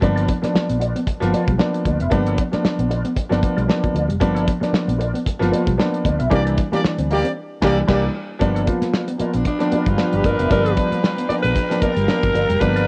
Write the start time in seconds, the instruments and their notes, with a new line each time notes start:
0.01 fingered electric bass G1, upright piano F3 A#3 B3 D4, clean electric guitar G3, muted clean electric guitar stroke, kick, closed hi-hat
0.16 clean electric guitar B3 F4 A#4 D5, closed hi-hat
0.28 muted clean electric guitar stroke, kick, closed hi-hat
0.42 upright piano F3 A#3 B3 D4, clean electric guitar A#3, muted clean electric guitar stroke, muted fingered electric bass stroke, snare, closed hi-hat
0.53 muted clean electric guitar stroke, muted fingered electric bass stroke, snare
0.69 fingered electric bass A#1, clean electric guitar B3, closed hi-hat
0.80 clean electric guitar B3 F4 A#4 D5, muted clean electric guitar stroke, closed hi-hat
0.95 clean electric guitar B3, muted clean electric guitar stroke, closed hi-hat
1.06 muted clean electric guitar stroke, muted fingered electric bass stroke, kick, closed hi-hat
1.20 fingered electric bass G1, upright piano F3 A#3 B3 F4, snare, closed hi-hat
1.32 clean electric guitar A#3 B3 F4 A#4 D5, closed hi-hat
1.47 fingered electric bass B1, clean electric guitar G3, muted clean electric guitar stroke, kick, closed hi-hat
1.58 upright piano F3 A#3 B3 D4, muted clean electric guitar stroke, snare
1.74 muted clean electric guitar stroke, closed hi-hat
1.85 fingered electric bass D2, clean electric guitar A#3 B3 F4 A#4 D5, kick, closed hi-hat
2.00 fingered electric bass F1, clean electric guitar B3 F4 A#4 E5, closed hi-hat
2.10 fingered electric bass G1, upright piano F3 A#3 B3 D4, clean electric guitar G3, muted clean electric guitar stroke, kick, closed hi-hat
2.26 clean electric guitar B3 F4 A#4 D5, closed hi-hat
2.38 muted clean electric guitar stroke, kick, closed hi-hat
2.52 upright piano F3 A#3 B3 D4, clean electric guitar A#3, muted clean electric guitar stroke, muted fingered electric bass stroke, snare, closed hi-hat
2.64 muted clean electric guitar stroke, muted fingered electric bass stroke, snare
2.79 fingered electric bass A#1, clean electric guitar B3, closed hi-hat
2.89 clean electric guitar B3 F4 A#4 D5, muted clean electric guitar stroke, closed hi-hat
3.05 clean electric guitar B3, muted clean electric guitar stroke, closed hi-hat
3.15 muted clean electric guitar stroke, muted fingered electric bass stroke, kick, closed hi-hat
3.29 fingered electric bass G1, upright piano F3 A#3 B3 D4, muted clean electric guitar stroke, snare, closed hi-hat
3.43 clean electric guitar A#3, kick, closed hi-hat
3.57 fingered electric bass B1, clean electric guitar G3 B3 F4 A#4 D5, closed hi-hat
3.67 upright piano F3 A#3 B3 D4, muted clean electric guitar stroke, snare
3.84 clean electric guitar F3, kick, closed hi-hat
3.94 fingered electric bass D2, clean electric guitar B3 F4 A#4 D5, muted clean electric guitar stroke, closed hi-hat
4.08 fingered electric bass F1, clean electric guitar G3, muted clean electric guitar stroke, closed hi-hat
4.20 fingered electric bass G1, upright piano F3 A#3 B3 D4, clean electric guitar G3, muted clean electric guitar stroke, kick, closed hi-hat
4.34 clean electric guitar B3 F4 A#4 D5, closed hi-hat
4.47 muted clean electric guitar stroke, kick, closed hi-hat
4.60 upright piano F3 A#3 B3 D4, clean electric guitar A#3, muted clean electric guitar stroke, muted fingered electric bass stroke, snare, closed hi-hat
4.72 muted clean electric guitar stroke, muted fingered electric bass stroke, snare
4.88 fingered electric bass A#1, clean electric guitar B3, closed hi-hat
4.98 clean electric guitar B3 F4 A#4 D5, muted clean electric guitar stroke, closed hi-hat
5.13 clean electric guitar B3, muted clean electric guitar stroke, closed hi-hat
5.25 muted clean electric guitar stroke, muted fingered electric bass stroke, kick, closed hi-hat
5.39 fingered electric bass G1, upright piano F3 A#3 B3 F4, snare, closed hi-hat
5.51 clean electric guitar A#3 B3 F4 A#4 D5, closed hi-hat
5.66 fingered electric bass B1, clean electric guitar G3, muted clean electric guitar stroke, kick, closed hi-hat
5.78 upright piano F3 A#3 B3 D4, muted clean electric guitar stroke, snare
5.93 muted clean electric guitar stroke, closed hi-hat
6.04 fingered electric bass D2, clean electric guitar A#3 B3 F4 A#4 D5, kick, closed hi-hat
6.19 fingered electric bass B1, clean electric guitar B3 F4 A#4 E5, closed hi-hat
6.30 fingered electric bass C2, upright piano E3 G3 A#3 D4, horn section A#3 G4 D5, clean electric guitar C4, kick, closed hi-hat
6.45 clean electric guitar A#3 E4 G4 D5, closed hi-hat
6.58 muted clean electric guitar stroke, kick, closed hi-hat
6.72 upright piano E3 G3 A#3 D4, horn section A#3 G4 D5, clean electric guitar A#3, muted fingered electric bass stroke, muted clean electric guitar stroke, snare, closed hi-hat
6.84 muted clean electric guitar stroke, muted fingered electric bass stroke, snare
6.98 fingered electric bass D2, clean electric guitar C4, closed hi-hat
7.10 clean electric guitar A#3 E4 G4 D5, horn section A#3 G4 D5, muted clean electric guitar stroke, open hi-hat
7.24 clean electric guitar C4, closed hi-hat
7.61 fingered electric bass C2, upright piano E3 G3 A#3 D4, horn section A#3 G4 D5, clean electric guitar A#3 E4 G4 D5, kick, snare, crash
7.87 fingered electric bass C2, upright piano E3 G3 A#3 D4, clean electric guitar A#3 E4 G4 D5, horn section A#3 G4 D5, kick, snare, crash
8.39 fingered electric bass G1, upright piano F3 A#3 B3 D4, clean electric guitar G3, ambient pad F5 G5 A#5, muted clean electric guitar stroke, kick, closed hi-hat
8.55 clean electric guitar B3 F4 A#4 D5, closed hi-hat
8.66 upright piano F3 A#3 B3 F4, muted clean electric guitar stroke, kick, closed hi-hat
8.82 clean electric guitar A#3, muted fingered electric bass stroke, muted clean electric guitar stroke, snare, closed hi-hat
8.93 muted clean electric guitar stroke, snare
9.08 clean electric guitar B3, closed hi-hat
9.18 upright piano F3 A#3 B3 F4, alto saxophone A#3, clean electric guitar B3 F4 A#4 D5, muted clean electric guitar stroke, muted fingered electric bass stroke, closed hi-hat
9.34 fingered electric bass A#1, clean electric guitar B3, alto saxophone D4, muted clean electric guitar stroke, closed hi-hat
9.45 horn section F3 D4 B4, alto saxophone D4, muted clean electric guitar stroke, kick, closed hi-hat
9.59 upright piano F3 A#3 B3 D4, snare, closed hi-hat
9.72 clean electric guitar A#3 B3 F4 A#4 D5, muted fingered electric bass stroke, closed hi-hat
9.85 fingered electric bass G1, clean electric guitar G3, upright piano B3 F4, muted clean electric guitar stroke, kick, closed hi-hat
9.89 alto saxophone F4
9.97 upright piano F3 G3 B3 D4, muted clean electric guitar stroke, snare
10.13 fingered electric bass G1, alto saxophone G4, muted clean electric guitar stroke, closed hi-hat
10.24 fingered electric bass G1, clean electric guitar A#3 B3 F4 A#4 D5, alto saxophone A#4, kick, closed hi-hat
10.39 fingered electric bass F1, clean electric guitar B3 F4 A#4 E5, closed hi-hat
10.49 fingered electric bass G1, upright piano F3 A#3 B3 D4, clean electric guitar G3, alto saxophone A#4, muted clean electric guitar stroke, kick, closed hi-hat
10.65 clean electric guitar B3 F4 A#4 D5, closed hi-hat
10.76 upright piano F3 G3 B3 D4, muted clean electric guitar stroke, kick, closed hi-hat
10.92 clean electric guitar A#3, muted fingered electric bass stroke, muted clean electric guitar stroke, closed hi-hat
11.03 muted clean electric guitar stroke, snare
11.18 clean electric guitar B3, closed hi-hat
11.29 upright piano F3 A#3 B3 D4, clean electric guitar B3 F4 A#4 D5, alto saxophone D5, muted fingered electric bass stroke, closed hi-hat
11.43 fingered electric bass A#1, clean electric guitar B3, alto saxophone B4, muted clean electric guitar stroke, closed hi-hat
11.56 muted clean electric guitar stroke, kick, closed hi-hat
11.70 upright piano F3 A#3 B3 D4, snare, closed hi-hat
11.81 clean electric guitar A#3 B3 F4 A#4 D5, alto saxophone A#4, muted fingered electric bass stroke, kick, closed hi-hat
11.96 fingered electric bass G1, clean electric guitar G3, upright piano B3 F4, muted clean electric guitar stroke, closed hi-hat
12.07 upright piano F3 A#3 B3 D4, muted clean electric guitar stroke, snare
12.23 fingered electric bass G1, clean electric guitar F3, kick, closed hi-hat
12.34 fingered electric bass G1, clean electric guitar B3 F4 A#4 D5, muted clean electric guitar stroke, closed hi-hat
12.49 fingered electric bass F1, clean electric guitar G3, muted clean electric guitar stroke, closed hi-hat
12.60 fingered electric bass G1, upright piano F3 A#3 B3 D4, clean electric guitar G3, horn section B3 A#4 D5, alto saxophone B4, muted clean electric guitar stroke, kick, closed hi-hat
12.76 clean electric guitar B3 F4 A#4 D5, closed hi-hat